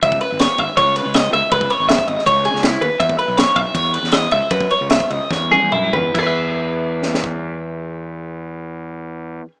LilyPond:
<<
  \new Staff \with { instrumentName = "Clean electric guitar" } { \time 4/4 \key e \major \tempo 4 = 154 e''8 b'8 cis''8 e''8 cis''8 b'8 dis''8 e''8 | b'8 cis''8 e''8 dis''8 cis''8 gis'8 e'8 b'8 | e''8 b'8 cis''8 e''8 cis''8 b'8 dis''8 e''8 | b'8 cis''8 e''8 dis''8 cis''8 gis'8 e'8 b'8 |
<e' gis' b' e''>1~ | <e' gis' b' e''>1 | }
  \new Staff \with { instrumentName = "Fingered electric bass" } { \clef bass \time 4/4 \key e \major cis,8 r16 gis,,8 r16 gis,,16 r16 cis,8. cis,8. cis,16 r16 | cis,8 r16 gis,,8 r16 gis,,16 r16 cis,8. cis,8. dis,16 r16 | e,8 r16 b,,8 r16 b,,16 r16 e,8. e,8. cis,16 r16 | fis,8 r16 cis,8 r16 cis,16 r16 e,8. e,16 fis,8 e,8 |
e,1~ | e,1 | }
  \new DrumStaff \with { instrumentName = "Drums" } \drummode { \time 4/4 <bd cymr>16 bd16 cymr8 <cymr sn>8 <bd cymr>8 <bd cymr>8 cymr8 <cymr sn>8 cymr8 | <bd cymr>16 bd16 cymr8 <cymr sn>16 bd16 cymr16 sn16 <bd cymr>8 cymr16 sn16 <cymr sn>8 cymr8 | <bd cymr>16 bd16 cymr8 <cymr sn>8 <bd cymr>8 <bd cymr>8 cymr16 sn16 <cymr sn>8 cymr8 | <bd cymr>16 bd16 cymr8 <cymr sn>16 bd16 cymr8 <bd sn>8 tommh8 toml8 tomfh8 |
<cymc bd>4 r4 sn16 sn16 bd8 r4 | r4 r4 r4 r4 | }
>>